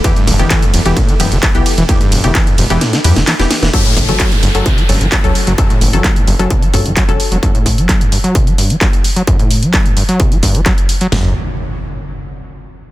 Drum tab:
RD |x-x-x-x-x-x-x-x-|x-x-x-x-x-x-x-x-|----------------|----------------|
HH |xxoxxxoxxxoxxxox|xxoxxxoxxxoxxxox|xxoxxxoxxxoxxxox|xxoxxxoxxxoxxxox|
CP |----x-------x---|----x-------x---|----x-------x---|----x-------x---|
SD |----------------|--------oo-ooooo|----------------|----------------|
FT |----------------|----------------|----------------|----------------|
BD |o-o-o---o---o---|o---o-----------|o-o-o---o---o---|o---o---o-o-o---|

RD |----------------|----------------|----------------|
HH |xxoxxxoxxxoxxxox|xxoxxxoxxxoxxxox|o---------------|
CP |----x-------x---|----x-------x---|----------------|
SD |----------------|----------------|o---------------|
FT |----------------|----------------|o---------------|
BD |o-o-o---o---o---|o---o---o-o-o---|----------------|